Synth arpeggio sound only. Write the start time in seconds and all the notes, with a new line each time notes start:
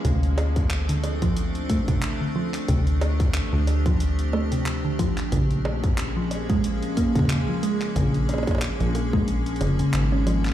0.05 C3
0.89 D3
1.22 F3
1.70 A3
1.88 C3
2.21 D3
2.36 F3
2.69 C3
3.53 D3
3.86 F3
4.33 A3
4.52 C3
4.85 D3
4.99 F3
5.32 C#3
6.17 F3
6.50 G#3
6.97 A#3
7.16 C#3
7.49 F3
7.63 G#3
7.96 C#3
8.80 F3
9.13 G#3
9.61 C#3
9.79 C#3
10.12 C#4
10.27 F3